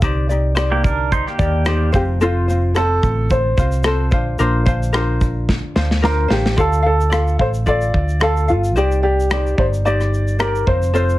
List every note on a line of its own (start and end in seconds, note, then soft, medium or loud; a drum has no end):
0.02 1.22 C2 loud
0.02 0.30 D#4 medium
0.02 0.29 G4 medium
0.02 0.29 C5 medium
0.02 0.28 D5 loud
0.02 kick loud
0.02 shaker medium
0.29 0.55 D#4 soft
0.29 0.56 G4 medium
0.29 0.57 D5 medium
0.29 shaker medium
0.55 1.38 D#4 medium
0.55 1.39 G4 medium
0.55 1.42 C5 medium
0.55 1.37 D5 medium
0.55 cross-stick loud
0.55 shaker medium
0.72 0.83 A#3 medium
0.72 0.83 G4 medium
0.84 1.11 D4 medium
0.84 1.10 A#4 medium
0.84 kick medium
0.84 shaker medium
1.12 1.27 D#4 medium
1.12 1.26 C5 medium
1.12 kick medium
1.12 shaker medium
1.27 1.90 A#3 soft
1.27 1.91 G4 medium
1.27 cross-stick soft
1.39 1.90 D#2 medium
1.39 1.66 D#4 soft
1.39 1.66 G4 soft
1.39 1.66 D5 medium
1.39 kick medium
1.39 shaker soft
1.66 1.94 D#4 medium
1.66 1.94 G4 medium
1.66 1.91 C5 medium
1.66 1.92 D5 medium
1.66 cross-stick loud
1.66 shaker medium
1.92 2.99 F1 loud
1.92 2.20 C4 soft
1.92 2.21 F4 soft
1.92 2.01 G4 medium
1.92 2.20 C5 medium
1.92 kick medium
1.92 shaker soft
2.21 2.48 C4 medium
2.21 2.48 F4 medium
2.21 2.78 F4 medium
2.21 2.48 A4 medium
2.21 2.47 C5 medium
2.21 shaker medium
2.48 2.75 C4 soft
2.48 2.75 F4 soft
2.48 2.74 C5 soft
2.48 shaker medium
2.74 3.59 C4 medium
2.74 3.58 F4 medium
2.74 3.57 A4 medium
2.74 3.32 A4 loud
2.74 3.57 C5 medium
2.74 cross-stick loud
2.74 shaker medium
3.03 3.53 A1 medium
3.03 kick medium
3.03 shaker soft
3.30 4.08 C5 medium
3.30 kick medium
3.30 shaker medium
3.57 4.12 C2 medium
3.57 3.85 C4 soft
3.57 3.85 F4 soft
3.57 3.84 C5 medium
3.57 kick medium
3.57 shaker medium
3.72 shaker soft
3.84 4.12 C4 medium
3.84 4.12 F4 medium
3.84 4.11 A4 medium
3.84 4.10 C5 medium
3.84 cross-stick loud
3.84 shaker medium
4.11 4.37 A#1 medium
4.11 4.38 D4 medium
4.11 4.39 F4 medium
4.11 4.39 C5 medium
4.11 kick loud
4.11 shaker soft
4.39 5.59 A#1 loud
4.39 4.67 D4 medium
4.39 4.66 F4 loud
4.39 4.66 A#4 medium
4.39 4.64 C5 medium
4.39 shaker medium
4.66 4.93 D4 soft
4.66 4.94 F4 medium
4.66 4.93 C5 medium
4.66 kick medium
4.66 shaker medium
4.83 shaker medium
4.93 5.78 D4 medium
4.93 5.77 F4 medium
4.93 5.75 A#4 medium
4.93 5.74 C5 medium
4.93 cross-stick loud
4.93 shaker medium
5.21 kick medium
5.21 shaker medium
5.49 kick medium
5.49 snare soft
5.76 6.26 D2 medium
5.76 6.02 D4 soft
5.76 6.03 F4 medium
5.76 6.03 C5 medium
5.76 snare medium
5.91 snare medium
6.02 6.30 D4 medium
6.02 6.29 F4 medium
6.02 6.30 A#4 medium
6.02 6.32 A#4 medium
6.02 6.27 C5 medium
6.02 snare medium
6.28 6.55 A1 medium
6.28 6.56 D4 medium
6.28 6.56 F4 medium
6.28 6.59 G4 medium
6.28 6.57 C5 medium
6.28 snare medium
6.46 snare medium
6.56 7.36 D2 loud
6.56 6.84 F4 medium
6.56 6.83 A4 medium
6.56 6.85 A4 medium
6.56 6.84 D5 medium
6.56 6.81 F5 medium
6.56 kick loud
6.56 shaker medium
6.73 shaker medium
6.82 7.10 F4 soft
6.82 7.11 A4 soft
6.82 7.42 A4 medium
6.82 7.11 F5 soft
7.01 shaker soft
7.10 7.39 F4 medium
7.10 7.39 A4 medium
7.10 7.38 D5 medium
7.10 7.38 F5 medium
7.10 cross-stick medium
7.10 shaker medium
7.27 shaker soft
7.39 7.90 A1 medium
7.39 7.65 F4 soft
7.39 7.66 A4 soft
7.39 7.47 C5 medium
7.39 7.67 F5 soft
7.39 kick medium
7.54 shaker medium
7.66 8.21 F4 medium
7.66 8.21 A4 medium
7.66 8.20 D5 medium
7.66 8.24 D5 medium
7.66 8.22 F5 medium
7.66 kick medium
7.66 shaker medium
7.81 shaker soft
7.94 8.50 D2 medium
7.94 kick medium
8.09 shaker soft
8.20 8.49 F4 medium
8.20 8.49 A4 medium
8.20 8.50 A4 medium
8.20 8.48 D5 medium
8.20 8.47 F5 medium
8.20 cross-stick loud
8.20 shaker medium
8.37 shaker soft
8.48 8.76 G1 medium
8.48 8.77 F4 medium
8.48 8.76 F4 soft
8.48 8.76 A4 soft
8.48 8.76 F5 soft
8.48 shaker soft
8.64 shaker medium
8.76 9.54 C2 loud
8.76 9.03 D#4 medium
8.76 9.03 G4 medium
8.76 9.02 G4 medium
8.76 9.03 C5 medium
8.76 9.02 D5 medium
8.76 shaker medium
8.91 shaker soft
9.03 9.30 D#4 soft
9.03 9.60 G4 medium
9.03 9.31 G4 soft
9.03 9.30 D5 soft
9.20 shaker soft
9.30 9.58 D#4 medium
9.30 9.58 G4 medium
9.30 9.58 C5 medium
9.30 9.56 D5 medium
9.30 cross-stick loud
9.30 shaker medium
9.47 shaker soft
9.58 10.63 G1 medium
9.58 9.85 D#4 soft
9.58 9.86 G4 soft
9.58 9.65 C5 medium
9.58 9.85 D5 soft
9.58 kick medium
9.74 shaker soft
9.85 10.39 D#4 medium
9.85 10.40 G4 medium
9.85 10.39 C5 medium
9.85 10.36 D5 medium
9.85 10.39 D5 medium
9.85 shaker medium
10.00 cross-stick soft
10.00 shaker soft
10.14 shaker soft
10.28 shaker soft
10.39 10.67 D#4 medium
10.39 10.67 G4 medium
10.39 10.68 A#4 medium
10.39 10.65 C5 medium
10.39 10.68 D5 medium
10.39 cross-stick loud
10.39 shaker medium
10.55 shaker soft
10.67 11.19 F1 medium
10.67 10.93 C4 soft
10.67 10.93 F4 soft
10.67 10.94 C5 soft
10.67 10.93 C5 medium
10.67 kick medium
10.82 shaker soft
10.94 11.19 C4 medium
10.94 11.19 F4 medium
10.94 11.19 A4 medium
10.94 11.19 C5 medium
10.94 shaker medium
11.09 shaker soft